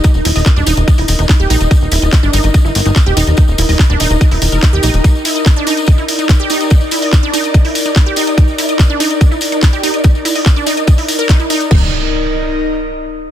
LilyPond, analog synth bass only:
\new Staff \with { instrumentName = "Analog synth bass" } { \clef bass \time 4/4 \tempo 4 = 144 r16 ees,,16 ees,,16 ees,,16 r16 ees,,16 ees,,16 ees,,16 r16 ees,,16 ees,,16 fes,,16 r16 ees,,16 bes,,16 ees,,16 | r16 ees,,16 ees,,16 ees,,16 r16 g,,16 g,,16 g,,16 r16 g,,16 g,,16 g,,16 r16 ees,,16 ees,,16 ees,,16 | r16 ees,,16 ees,,16 ees,,16 r16 ees,,16 ees,,16 ees,,16 r16 ees,,16 ees,,16 fes,,16 r16 ees,,16 bes,,16 ees,,16 | r1 |
r1 | r1 | r1 | ees,,8 r2. r8 | }